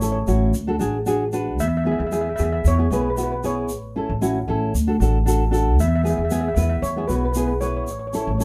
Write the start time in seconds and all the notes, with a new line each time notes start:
Already playing: A1
0.01 C#4 E4 A4 C#5, shaker
0.12 C#5
0.27 A1 C#4 E4 F#4, shaker
0.54 D2, shaker
0.67 D4 F#4 A4
0.79 A1 D4 F#4 G#4, shaker
1.06 D4 F#4 G#4, shaker
1.33 D4 F#4 B4, shaker
1.59 E2 E5, shaker
1.77 E5
1.84 B3 E4 G#4 E5
1.92 E5
1.99 E2 E5
2.06 E5
2.11 B3 E4 G#4 E5, shaker
2.21 E5
2.29 E5
2.36 E2 B3 E4 G#4 E5, shaker
2.44 E5
2.52 E5
2.65 E2 C#5, shaker
2.78 B3 E4 G#4
2.90 B1 B3 E4 G#4 B4, shaker
3.02 B4
3.10 B4
3.16 B3 E4 F#4 B4, shaker
3.23 B4
3.32 B4
3.43 B3 E4 G#4 C#5, shaker
3.69 A1, shaker
3.96 C#4 E4 A4
4.09 A1
4.21 C#4 E4 F#4, shaker
4.48 A1 C#4 E4 A4
4.74 D2, shaker
4.87 D4 F#4 A4
5.00 A1 D4 F#4 A4, shaker
5.26 D4 F#4 A4, shaker
5.51 D4 F#4 A4, shaker
5.79 E2 E5, shaker
5.88 E5
5.96 E5
6.02 B3 E4 G#4 E5
6.06 E5, shaker
6.18 E2 E5
6.25 E5
6.31 B3 E4 G#4, shaker
6.41 E5
6.48 E5
6.55 E2 B3 E4 B4 E5, shaker
6.63 E5
6.70 E5
6.82 E2 C#5, shaker
6.96 B3 E4 G#4
7.08 B1 B3 E4 F#4 B4, shaker
7.16 B4
7.25 B4
7.32 B3 E4 B4, shaker
7.37 G#4 B4
7.47 B4
7.61 B3 E4 B4 C#5, shaker
7.67 C#5
7.77 C#5
7.84 A1 C#5, shaker
7.91 C#5
7.99 C#5
8.07 C#5
8.13 C#4 E4 A4 C#5, shaker
8.22 C#5
8.27 A1 C#5
8.38 C#4 E4 A4 C#5, shaker